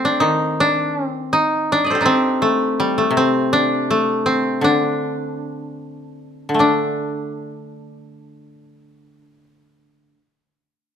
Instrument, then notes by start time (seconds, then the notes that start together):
koto
Already playing: A3 C4
0.05 D4
0.20 D#3 D#4
0.60 D4
1.05 C4
1.33 D#4
1.72 D4
1.84 D5 D#5
1.90 A4 C5
1.95 G4
2.01 D4 D#4
2.06 C4
2.42 A3
2.80 G3
2.98 A3
3.11 C3
3.17 C4
3.53 D4
3.91 A3
4.26 C4
4.61 D3 D4
6.49 D3
6.54 A3
6.59 D4